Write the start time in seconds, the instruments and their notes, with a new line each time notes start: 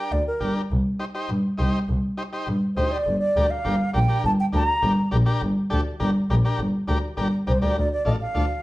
Already playing: transistor combo organ D4 G4 A#4, flute G5
0.12 double bass D2, flute D5
0.28 flute A#4
0.40 double bass G1, transistor combo organ D4 G4 A#4
0.71 double bass C2
0.99 transistor combo organ D#4 G4 C5
1.15 transistor combo organ D#4 G4 C5
1.29 double bass G2
1.58 double bass C2, transistor combo organ D#4 G4 C5
1.88 double bass C2
2.17 transistor combo organ D#4 G4 C5
2.33 transistor combo organ D#4 G4 C5
2.47 double bass G2
2.77 double bass D2, transistor combo organ D#4 G4 C5, flute C5
2.91 flute D5
3.07 double bass G1
3.20 flute D5
3.36 double bass D2, transistor combo organ D4 G4 A#4
3.51 flute F5
3.64 double bass G1, transistor combo organ D4 G4 A#4
3.94 double bass A#1, transistor combo organ D4 G4 A#4, flute G5
4.08 transistor combo organ D4 G4 A#4
4.25 double bass G1, flute A5
4.40 flute G5
4.52 double bass D2, transistor combo organ D4 G4 A#4, flute A#5
4.82 double bass G1, transistor combo organ D4 G4 A#4
5.11 double bass A#1, transistor combo organ D4 G4 A#4
5.26 transistor combo organ D4 G4 A#4
5.43 double bass G1
5.70 double bass D2, transistor combo organ D4 G4 A4
6.00 double bass G1, transistor combo organ D4 G4 A#4
6.30 double bass A#1, transistor combo organ D4 G4 A#4
6.45 transistor combo organ D4 G4 A#4
6.59 double bass G1
6.88 double bass D2, transistor combo organ D4 G4 A#4
7.17 double bass G1, transistor combo organ D4 G4 A#4
7.47 double bass C2, transistor combo organ D4 G4 A#4, flute C5
7.62 double bass D2, transistor combo organ D4 G4 A#4, flute D5
7.78 double bass D2, flute D5
7.92 flute D5
8.05 double bass A1, transistor combo organ D4 F4 A4, flute D#5
8.21 flute F5
8.34 double bass D2, transistor combo organ D4 F4 A4